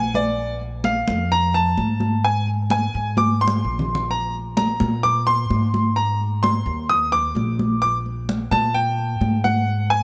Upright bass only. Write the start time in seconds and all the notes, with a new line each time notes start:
Already playing: A#1
1.08 F2
1.78 G#2
2.95 G#2
3.64 A#1
4.81 A#2
5.50 G#2
6.66 D#2
7.35 A#1
8.51 A#2
9.21 G#2